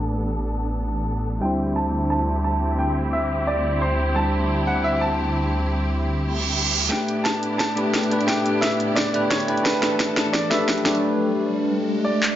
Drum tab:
HH |----------------|----------------|----------------|----------------|
CP |----------------|----------------|----------------|----------------|
SD |----------------|----------------|----------------|----------------|
BD |----------------|----------------|----------------|----------------|

HH |----------------|x-x-x-x-x-x-xxxx|x-x-x-x-x-x-xxxx|x-x-x-x-x-x-xxxx|
CP |----------------|----------------|----------------|----------------|
SD |----------------|o---o---o---o---|o---o---o---o---|o-o-o-o-o-o-o-o-|
BD |----------------|o---o---o---o---|o---o---o---o---|o---o---o---o---|

HH |----------------|
CP |--------------x-|
SD |----------------|
BD |----------------|